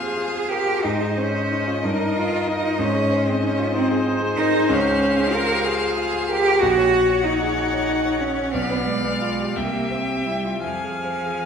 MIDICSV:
0, 0, Header, 1, 5, 480
1, 0, Start_track
1, 0, Tempo, 664452
1, 604, Time_signature, 6, 3, 24, 8
1, 1562, Tempo, 637620
1, 6362, Tempo, 683371
1, 7322, Tempo, 726392
1, 7802, Tempo, 817439
1, 8286, End_track
2, 0, Start_track
2, 0, Title_t, "Violin"
2, 0, Program_c, 0, 40
2, 0, Note_on_c, 0, 77, 70
2, 575, Note_off_c, 0, 77, 0
2, 608, Note_on_c, 0, 75, 73
2, 3442, Note_off_c, 0, 75, 0
2, 3478, Note_on_c, 0, 77, 90
2, 4884, Note_off_c, 0, 77, 0
2, 4908, Note_on_c, 0, 78, 83
2, 6333, Note_off_c, 0, 78, 0
2, 6355, Note_on_c, 0, 77, 75
2, 7075, Note_on_c, 0, 79, 60
2, 7086, Note_off_c, 0, 77, 0
2, 7795, Note_off_c, 0, 79, 0
2, 7799, Note_on_c, 0, 80, 54
2, 8286, Note_off_c, 0, 80, 0
2, 8286, End_track
3, 0, Start_track
3, 0, Title_t, "Viola"
3, 0, Program_c, 1, 41
3, 0, Note_on_c, 1, 72, 60
3, 575, Note_off_c, 1, 72, 0
3, 604, Note_on_c, 1, 72, 63
3, 1299, Note_off_c, 1, 72, 0
3, 1333, Note_on_c, 1, 70, 75
3, 2007, Note_off_c, 1, 70, 0
3, 2038, Note_on_c, 1, 72, 80
3, 4881, Note_off_c, 1, 72, 0
3, 4909, Note_on_c, 1, 73, 78
3, 6333, Note_off_c, 1, 73, 0
3, 6366, Note_on_c, 1, 74, 69
3, 7078, Note_on_c, 1, 76, 64
3, 7088, Note_off_c, 1, 74, 0
3, 7803, Note_off_c, 1, 76, 0
3, 7807, Note_on_c, 1, 77, 56
3, 8286, Note_off_c, 1, 77, 0
3, 8286, End_track
4, 0, Start_track
4, 0, Title_t, "Grand piano"
4, 0, Program_c, 2, 0
4, 0, Control_c, 2, 64, 127
4, 0, Note_on_c, 2, 41, 62
4, 0, Note_on_c, 2, 65, 51
4, 0, Note_on_c, 2, 67, 41
4, 0, Note_on_c, 2, 68, 51
4, 0, Note_on_c, 2, 72, 46
4, 7, Note_off_c, 2, 68, 0
4, 7, Note_on_c, 2, 68, 53
4, 80, Note_off_c, 2, 65, 0
4, 124, Note_on_c, 2, 65, 54
4, 198, Note_off_c, 2, 68, 0
4, 249, Note_on_c, 2, 68, 47
4, 315, Note_off_c, 2, 65, 0
4, 369, Note_on_c, 2, 70, 51
4, 438, Note_off_c, 2, 68, 0
4, 486, Note_off_c, 2, 70, 0
4, 488, Note_on_c, 2, 68, 55
4, 572, Note_off_c, 2, 41, 0
4, 607, Note_off_c, 2, 68, 0
4, 610, Note_on_c, 2, 44, 65
4, 618, Control_c, 2, 64, 0
4, 619, Note_off_c, 2, 72, 0
4, 620, Note_off_c, 2, 67, 0
4, 713, Control_c, 2, 64, 127
4, 726, Note_on_c, 2, 68, 55
4, 847, Note_on_c, 2, 72, 54
4, 920, Note_off_c, 2, 68, 0
4, 968, Note_on_c, 2, 68, 55
4, 1040, Note_off_c, 2, 72, 0
4, 1091, Note_on_c, 2, 63, 56
4, 1160, Note_off_c, 2, 68, 0
4, 1209, Note_on_c, 2, 65, 49
4, 1281, Note_off_c, 2, 63, 0
4, 1309, Note_off_c, 2, 44, 0
4, 1328, Note_off_c, 2, 65, 0
4, 1330, Note_on_c, 2, 43, 72
4, 1339, Control_c, 2, 64, 0
4, 1444, Note_on_c, 2, 70, 61
4, 1459, Control_c, 2, 64, 127
4, 1564, Note_on_c, 2, 63, 58
4, 1633, Note_off_c, 2, 70, 0
4, 1682, Note_on_c, 2, 70, 57
4, 1753, Note_off_c, 2, 63, 0
4, 1799, Note_on_c, 2, 63, 59
4, 1870, Note_off_c, 2, 70, 0
4, 1914, Note_on_c, 2, 65, 58
4, 1987, Note_off_c, 2, 63, 0
4, 2014, Note_off_c, 2, 43, 0
4, 2033, Note_off_c, 2, 65, 0
4, 2033, Note_on_c, 2, 44, 77
4, 2045, Control_c, 2, 64, 0
4, 2133, Control_c, 2, 64, 127
4, 2150, Note_on_c, 2, 68, 62
4, 2275, Note_on_c, 2, 72, 61
4, 2342, Note_off_c, 2, 68, 0
4, 2396, Note_on_c, 2, 68, 54
4, 2464, Note_off_c, 2, 72, 0
4, 2516, Note_on_c, 2, 63, 62
4, 2584, Note_off_c, 2, 68, 0
4, 2637, Note_on_c, 2, 65, 62
4, 2703, Note_off_c, 2, 63, 0
4, 2752, Note_off_c, 2, 65, 0
4, 2757, Note_on_c, 2, 63, 67
4, 2877, Note_on_c, 2, 68, 68
4, 2944, Note_off_c, 2, 63, 0
4, 2994, Note_on_c, 2, 63, 69
4, 3065, Note_off_c, 2, 68, 0
4, 3112, Note_on_c, 2, 68, 59
4, 3184, Note_off_c, 2, 63, 0
4, 3227, Note_on_c, 2, 70, 58
4, 3303, Note_off_c, 2, 68, 0
4, 3349, Note_off_c, 2, 70, 0
4, 3350, Note_on_c, 2, 68, 61
4, 3439, Note_off_c, 2, 44, 0
4, 3470, Note_off_c, 2, 68, 0
4, 3470, Note_on_c, 2, 37, 80
4, 3483, Control_c, 2, 64, 0
4, 3588, Control_c, 2, 64, 127
4, 3591, Note_on_c, 2, 68, 67
4, 3716, Note_on_c, 2, 72, 58
4, 3783, Note_off_c, 2, 68, 0
4, 3834, Note_on_c, 2, 68, 62
4, 3906, Note_off_c, 2, 72, 0
4, 3955, Note_on_c, 2, 65, 66
4, 4026, Note_off_c, 2, 68, 0
4, 4073, Note_on_c, 2, 67, 58
4, 4146, Note_off_c, 2, 65, 0
4, 4193, Note_off_c, 2, 67, 0
4, 4195, Note_on_c, 2, 65, 69
4, 4313, Note_on_c, 2, 68, 60
4, 4386, Note_off_c, 2, 65, 0
4, 4431, Note_on_c, 2, 65, 64
4, 4505, Note_off_c, 2, 68, 0
4, 4551, Note_on_c, 2, 68, 62
4, 4623, Note_off_c, 2, 65, 0
4, 4672, Note_on_c, 2, 70, 57
4, 4743, Note_off_c, 2, 68, 0
4, 4791, Note_off_c, 2, 70, 0
4, 4798, Note_on_c, 2, 68, 60
4, 4880, Note_off_c, 2, 37, 0
4, 4913, Note_off_c, 2, 68, 0
4, 4919, Note_on_c, 2, 34, 76
4, 4921, Control_c, 2, 64, 0
4, 5015, Control_c, 2, 64, 127
4, 5033, Note_on_c, 2, 73, 64
4, 5158, Note_on_c, 2, 66, 63
4, 5224, Note_off_c, 2, 73, 0
4, 5273, Note_on_c, 2, 73, 56
4, 5347, Note_off_c, 2, 66, 0
4, 5389, Note_on_c, 2, 66, 61
4, 5466, Note_off_c, 2, 73, 0
4, 5522, Note_on_c, 2, 68, 52
4, 5584, Note_off_c, 2, 66, 0
4, 5638, Note_off_c, 2, 68, 0
4, 5642, Note_on_c, 2, 66, 61
4, 5755, Note_on_c, 2, 73, 59
4, 5831, Note_off_c, 2, 66, 0
4, 5872, Note_on_c, 2, 66, 58
4, 5947, Note_off_c, 2, 73, 0
4, 5995, Note_on_c, 2, 73, 52
4, 6067, Note_off_c, 2, 66, 0
4, 6118, Note_on_c, 2, 75, 49
4, 6191, Note_off_c, 2, 73, 0
4, 6240, Note_off_c, 2, 75, 0
4, 6242, Note_on_c, 2, 73, 56
4, 6338, Note_off_c, 2, 34, 0
4, 6364, Note_on_c, 2, 35, 74
4, 6365, Note_off_c, 2, 73, 0
4, 6374, Control_c, 2, 64, 0
4, 6470, Control_c, 2, 64, 127
4, 6481, Note_on_c, 2, 71, 54
4, 6598, Note_on_c, 2, 74, 52
4, 6669, Note_off_c, 2, 71, 0
4, 6715, Note_on_c, 2, 71, 51
4, 6788, Note_off_c, 2, 74, 0
4, 6838, Note_on_c, 2, 65, 53
4, 6908, Note_off_c, 2, 71, 0
4, 6958, Note_on_c, 2, 67, 45
4, 7031, Note_off_c, 2, 65, 0
4, 7057, Note_off_c, 2, 35, 0
4, 7079, Note_off_c, 2, 67, 0
4, 7082, Note_on_c, 2, 36, 55
4, 7091, Control_c, 2, 64, 0
4, 7195, Control_c, 2, 64, 127
4, 7201, Note_on_c, 2, 67, 53
4, 7325, Note_on_c, 2, 72, 47
4, 7394, Note_off_c, 2, 67, 0
4, 7443, Note_on_c, 2, 67, 44
4, 7512, Note_off_c, 2, 72, 0
4, 7565, Note_on_c, 2, 64, 45
4, 7632, Note_off_c, 2, 67, 0
4, 7682, Note_on_c, 2, 65, 40
4, 7757, Note_off_c, 2, 64, 0
4, 7784, Note_off_c, 2, 36, 0
4, 7804, Note_off_c, 2, 65, 0
4, 7807, Note_on_c, 2, 41, 50
4, 7815, Control_c, 2, 64, 0
4, 7925, Note_on_c, 2, 68, 41
4, 7926, Control_c, 2, 64, 127
4, 8043, Note_on_c, 2, 72, 38
4, 8113, Note_off_c, 2, 68, 0
4, 8166, Note_on_c, 2, 68, 41
4, 8236, Note_off_c, 2, 72, 0
4, 8286, Note_off_c, 2, 41, 0
4, 8286, Note_off_c, 2, 68, 0
4, 8286, End_track
5, 0, Start_track
5, 0, Title_t, "Cello"
5, 0, Program_c, 3, 42
5, 0, Note_on_c, 3, 68, 97
5, 352, Note_on_c, 3, 67, 112
5, 363, Note_off_c, 3, 68, 0
5, 602, Note_on_c, 3, 63, 98
5, 613, Note_off_c, 3, 67, 0
5, 847, Note_on_c, 3, 61, 100
5, 858, Note_off_c, 3, 63, 0
5, 1325, Note_on_c, 3, 63, 95
5, 1336, Note_off_c, 3, 61, 0
5, 1561, Note_on_c, 3, 65, 103
5, 1572, Note_off_c, 3, 63, 0
5, 1800, Note_on_c, 3, 63, 110
5, 1811, Note_off_c, 3, 65, 0
5, 2038, Note_on_c, 3, 61, 117
5, 2050, Note_off_c, 3, 63, 0
5, 2397, Note_on_c, 3, 60, 96
5, 2408, Note_off_c, 3, 61, 0
5, 2504, Note_on_c, 3, 61, 103
5, 2516, Note_off_c, 3, 60, 0
5, 2737, Note_off_c, 3, 61, 0
5, 2741, Note_on_c, 3, 60, 100
5, 2979, Note_off_c, 3, 60, 0
5, 3219, Note_on_c, 3, 63, 127
5, 3465, Note_on_c, 3, 61, 113
5, 3476, Note_off_c, 3, 63, 0
5, 3942, Note_on_c, 3, 70, 113
5, 3953, Note_off_c, 3, 61, 0
5, 4188, Note_on_c, 3, 68, 98
5, 4199, Note_off_c, 3, 70, 0
5, 4660, Note_on_c, 3, 67, 125
5, 4671, Note_off_c, 3, 68, 0
5, 4898, Note_on_c, 3, 66, 127
5, 4909, Note_off_c, 3, 67, 0
5, 5382, Note_on_c, 3, 63, 100
5, 5394, Note_off_c, 3, 66, 0
5, 5619, Note_off_c, 3, 63, 0
5, 5623, Note_on_c, 3, 63, 99
5, 6108, Note_on_c, 3, 61, 96
5, 6119, Note_off_c, 3, 63, 0
5, 6353, Note_on_c, 3, 59, 102
5, 6365, Note_off_c, 3, 61, 0
5, 6586, Note_on_c, 3, 56, 88
5, 6596, Note_off_c, 3, 59, 0
5, 7071, Note_on_c, 3, 58, 83
5, 7081, Note_off_c, 3, 56, 0
5, 7314, Note_on_c, 3, 60, 76
5, 7324, Note_off_c, 3, 58, 0
5, 7555, Note_on_c, 3, 55, 82
5, 7565, Note_off_c, 3, 60, 0
5, 7789, Note_off_c, 3, 55, 0
5, 7793, Note_on_c, 3, 53, 80
5, 8286, Note_off_c, 3, 53, 0
5, 8286, End_track
0, 0, End_of_file